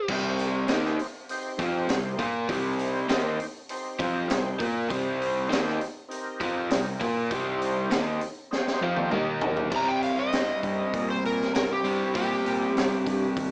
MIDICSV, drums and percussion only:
0, 0, Header, 1, 2, 480
1, 0, Start_track
1, 0, Key_signature, -3, "minor"
1, 0, Tempo, 603622
1, 66, Time_signature, 4, 2, 24, 8
1, 10745, End_track
2, 0, Start_track
2, 0, Title_t, "Drums"
2, 65, Note_on_c, 9, 49, 111
2, 69, Note_on_c, 9, 36, 104
2, 145, Note_off_c, 9, 49, 0
2, 148, Note_off_c, 9, 36, 0
2, 307, Note_on_c, 9, 46, 50
2, 387, Note_off_c, 9, 46, 0
2, 540, Note_on_c, 9, 46, 63
2, 549, Note_on_c, 9, 38, 87
2, 619, Note_off_c, 9, 46, 0
2, 628, Note_off_c, 9, 38, 0
2, 678, Note_on_c, 9, 38, 35
2, 758, Note_off_c, 9, 38, 0
2, 789, Note_on_c, 9, 46, 50
2, 869, Note_off_c, 9, 46, 0
2, 1026, Note_on_c, 9, 46, 67
2, 1106, Note_off_c, 9, 46, 0
2, 1264, Note_on_c, 9, 36, 104
2, 1264, Note_on_c, 9, 46, 51
2, 1343, Note_off_c, 9, 46, 0
2, 1344, Note_off_c, 9, 36, 0
2, 1501, Note_on_c, 9, 46, 74
2, 1510, Note_on_c, 9, 38, 103
2, 1581, Note_off_c, 9, 46, 0
2, 1589, Note_off_c, 9, 38, 0
2, 1739, Note_on_c, 9, 46, 52
2, 1742, Note_on_c, 9, 36, 97
2, 1819, Note_off_c, 9, 46, 0
2, 1821, Note_off_c, 9, 36, 0
2, 1980, Note_on_c, 9, 36, 106
2, 1984, Note_on_c, 9, 46, 76
2, 2060, Note_off_c, 9, 36, 0
2, 2063, Note_off_c, 9, 46, 0
2, 2220, Note_on_c, 9, 46, 54
2, 2300, Note_off_c, 9, 46, 0
2, 2458, Note_on_c, 9, 46, 73
2, 2467, Note_on_c, 9, 38, 100
2, 2538, Note_off_c, 9, 46, 0
2, 2546, Note_off_c, 9, 38, 0
2, 2701, Note_on_c, 9, 46, 57
2, 2781, Note_off_c, 9, 46, 0
2, 2935, Note_on_c, 9, 46, 76
2, 3014, Note_off_c, 9, 46, 0
2, 3178, Note_on_c, 9, 46, 55
2, 3180, Note_on_c, 9, 36, 105
2, 3257, Note_off_c, 9, 46, 0
2, 3260, Note_off_c, 9, 36, 0
2, 3417, Note_on_c, 9, 46, 66
2, 3426, Note_on_c, 9, 38, 100
2, 3497, Note_off_c, 9, 46, 0
2, 3505, Note_off_c, 9, 38, 0
2, 3657, Note_on_c, 9, 46, 56
2, 3659, Note_on_c, 9, 36, 102
2, 3737, Note_off_c, 9, 46, 0
2, 3738, Note_off_c, 9, 36, 0
2, 3900, Note_on_c, 9, 36, 111
2, 3903, Note_on_c, 9, 46, 75
2, 3979, Note_off_c, 9, 36, 0
2, 3982, Note_off_c, 9, 46, 0
2, 4147, Note_on_c, 9, 46, 51
2, 4227, Note_off_c, 9, 46, 0
2, 4390, Note_on_c, 9, 46, 59
2, 4398, Note_on_c, 9, 38, 98
2, 4469, Note_off_c, 9, 46, 0
2, 4478, Note_off_c, 9, 38, 0
2, 4513, Note_on_c, 9, 38, 31
2, 4593, Note_off_c, 9, 38, 0
2, 4620, Note_on_c, 9, 46, 50
2, 4700, Note_off_c, 9, 46, 0
2, 4860, Note_on_c, 9, 46, 64
2, 4940, Note_off_c, 9, 46, 0
2, 5096, Note_on_c, 9, 36, 106
2, 5097, Note_on_c, 9, 46, 53
2, 5176, Note_off_c, 9, 36, 0
2, 5176, Note_off_c, 9, 46, 0
2, 5332, Note_on_c, 9, 46, 71
2, 5340, Note_on_c, 9, 38, 104
2, 5411, Note_off_c, 9, 46, 0
2, 5420, Note_off_c, 9, 38, 0
2, 5574, Note_on_c, 9, 36, 101
2, 5576, Note_on_c, 9, 46, 55
2, 5653, Note_off_c, 9, 36, 0
2, 5656, Note_off_c, 9, 46, 0
2, 5813, Note_on_c, 9, 36, 109
2, 5814, Note_on_c, 9, 46, 71
2, 5893, Note_off_c, 9, 36, 0
2, 5893, Note_off_c, 9, 46, 0
2, 6056, Note_on_c, 9, 46, 55
2, 6136, Note_off_c, 9, 46, 0
2, 6289, Note_on_c, 9, 46, 65
2, 6298, Note_on_c, 9, 38, 95
2, 6368, Note_off_c, 9, 46, 0
2, 6377, Note_off_c, 9, 38, 0
2, 6529, Note_on_c, 9, 46, 53
2, 6609, Note_off_c, 9, 46, 0
2, 6780, Note_on_c, 9, 38, 63
2, 6859, Note_off_c, 9, 38, 0
2, 6898, Note_on_c, 9, 38, 53
2, 6978, Note_off_c, 9, 38, 0
2, 7128, Note_on_c, 9, 48, 58
2, 7207, Note_off_c, 9, 48, 0
2, 7246, Note_on_c, 9, 47, 82
2, 7326, Note_off_c, 9, 47, 0
2, 7486, Note_on_c, 9, 43, 96
2, 7565, Note_off_c, 9, 43, 0
2, 7607, Note_on_c, 9, 43, 75
2, 7687, Note_off_c, 9, 43, 0
2, 7727, Note_on_c, 9, 49, 98
2, 7728, Note_on_c, 9, 36, 110
2, 7806, Note_off_c, 9, 49, 0
2, 7807, Note_off_c, 9, 36, 0
2, 7972, Note_on_c, 9, 46, 47
2, 8051, Note_off_c, 9, 46, 0
2, 8210, Note_on_c, 9, 46, 58
2, 8219, Note_on_c, 9, 38, 82
2, 8290, Note_off_c, 9, 46, 0
2, 8299, Note_off_c, 9, 38, 0
2, 8456, Note_on_c, 9, 36, 76
2, 8458, Note_on_c, 9, 46, 46
2, 8535, Note_off_c, 9, 36, 0
2, 8537, Note_off_c, 9, 46, 0
2, 8697, Note_on_c, 9, 36, 101
2, 8698, Note_on_c, 9, 46, 63
2, 8777, Note_off_c, 9, 36, 0
2, 8778, Note_off_c, 9, 46, 0
2, 8947, Note_on_c, 9, 46, 45
2, 9027, Note_off_c, 9, 46, 0
2, 9076, Note_on_c, 9, 38, 28
2, 9156, Note_off_c, 9, 38, 0
2, 9182, Note_on_c, 9, 46, 65
2, 9191, Note_on_c, 9, 38, 108
2, 9262, Note_off_c, 9, 46, 0
2, 9271, Note_off_c, 9, 38, 0
2, 9420, Note_on_c, 9, 46, 50
2, 9500, Note_off_c, 9, 46, 0
2, 9660, Note_on_c, 9, 46, 70
2, 9663, Note_on_c, 9, 36, 104
2, 9740, Note_off_c, 9, 46, 0
2, 9742, Note_off_c, 9, 36, 0
2, 9908, Note_on_c, 9, 46, 56
2, 9988, Note_off_c, 9, 46, 0
2, 10153, Note_on_c, 9, 46, 62
2, 10162, Note_on_c, 9, 38, 78
2, 10233, Note_off_c, 9, 46, 0
2, 10241, Note_off_c, 9, 38, 0
2, 10390, Note_on_c, 9, 36, 77
2, 10390, Note_on_c, 9, 46, 56
2, 10469, Note_off_c, 9, 36, 0
2, 10470, Note_off_c, 9, 46, 0
2, 10630, Note_on_c, 9, 36, 108
2, 10630, Note_on_c, 9, 46, 68
2, 10709, Note_off_c, 9, 36, 0
2, 10710, Note_off_c, 9, 46, 0
2, 10745, End_track
0, 0, End_of_file